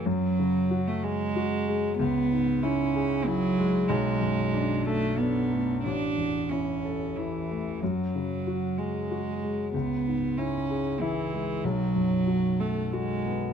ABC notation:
X:1
M:3/4
L:1/16
Q:1/4=93
K:F#m
V:1 name="Grand piano"
F,,2 C,2 F2 G2 F2 G,2 | C,,2 G,,2 E2 G2 E2 G,2 | B,,,2 F,,2 D2 A2 D2 A,2 | A,,,2 E,,2 E2 A2 E2 A,2 |
F,,2 C,2 F2 G2 F2 G,2 | C,,2 G,,2 E2 G2 E2 G,2 | B,,,2 F,,2 F2 A2 F2 B,2 |]
V:2 name="Cello" clef=bass
F,4- F, A, G,6 | B,4 C4 F,4 | G,6 A,2 B,4 | D4 C4 E,4 |
F,6 G,6 | B,4 C4 E,4 | F,6 A,2 G,4 |]